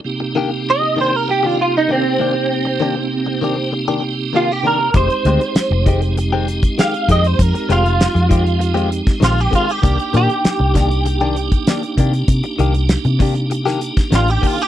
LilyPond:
<<
  \new Staff \with { instrumentName = "Clean electric guitar" } { \time 4/4 \key c \minor \tempo 4 = 98 r4 ees''8 c''16 bes'16 g'16 f'16 f'16 ees'16 c'4~ | c'2 r4 f'16 g'16 bes'8 | c''2 r4 f''8 ees''16 c''16 | bes'8 f'2 r8 f'16 g'16 f'16 g'16~ |
g'8 g'2. r8 | r2. f'16 g'16 f'16 g'16 | }
  \new Staff \with { instrumentName = "Tonewheel organ" } { \time 4/4 \key c \minor <c bes c' ees' g'>1~ | <c bes c' ees' g'>1 | <aes c' ees' g'>1~ | <aes c' ees' g'>1 |
<bes d' ees' g'>1~ | <bes d' ees' g'>1 | }
  \new Staff \with { instrumentName = "Clean electric guitar" } { \time 4/4 \key c \minor r8 <ees bes d' g'>16 r8. <ees bes d' g'>16 r8 <ees bes d' g'>16 r8 <ees bes d' g'>16 r16 <ees bes d' g'>16 r16 | r8 <ees bes d' g'>16 r8. <ees bes d' g'>16 r8 <ees bes d' g'>16 r8 <ees bes d' g'>16 r16 <ees bes d' g'>16 r16 | <ees aes c' g'>16 r16 <ees aes c' g'>16 r8. <ees aes c' g'>16 r8 <ees aes c' g'>16 r8 <ees aes c' g'>16 r16 <ees aes c' g'>16 r16 | r8 <ees aes c' g'>16 r8. <ees aes c' g'>16 r8 <ees aes c' g'>16 r8 <ees aes c' g'>16 r16 <ees aes c' g'>16 r16 |
<ees bes d' g'>16 r16 <ees bes d' g'>16 r8. <ees bes d' g'>16 r8 <ees bes d' g'>16 r8 <ees bes d' g'>16 r16 <ees bes d' g'>16 r16 | r8 <ees bes d' g'>16 r8. <ees bes d' g'>16 r8 <ees bes d' g'>16 r8 <ees bes d' g'>16 r16 <ees bes d' g'>16 r16 | }
  \new Staff \with { instrumentName = "Fingered electric bass" } { \clef bass \time 4/4 \key c \minor r1 | r1 | f,,16 r16 d,16 r8 f,,2 r16 f,8 | f,16 r16 f,,8. f,4.~ f,16 bes,,8 r8 |
c,16 r16 bes,16 r8 c,2 r16 c8 | c16 r16 c,8. c4.~ c16 a,,8 r8 | }
  \new DrumStaff \with { instrumentName = "Drums" } \drummode { \time 4/4 r4 r4 r4 r4 | r4 r4 r4 r4 | <hh bd>16 hh16 hh16 hh16 <hh sn>8 <hh bd>16 hh16 hh8 hh16 <hh bd>16 <hh sn>16 hh16 <hh bd>16 hh16 | <hh bd>16 hh16 hh16 hh16 <hh sn>16 hh16 <hh bd>16 hh16 hh16 hh16 hh16 <hh bd sn>16 <hh sn>16 hh16 <hh bd>16 hh16 |
<hh bd>16 hh16 hh16 hh16 <hh sn>8 <hh bd sn>16 hh16 hh8 hh16 <hh bd>16 <hh sn>16 hh16 <hh bd>16 hh16 | <hh bd>16 hh16 hh16 hh16 <hh sn>16 hh16 <hho bd>16 hh16 hh16 <hh sn>16 hh16 <hh bd sn>16 <hh sn>16 hh16 <hho bd>16 hh16 | }
>>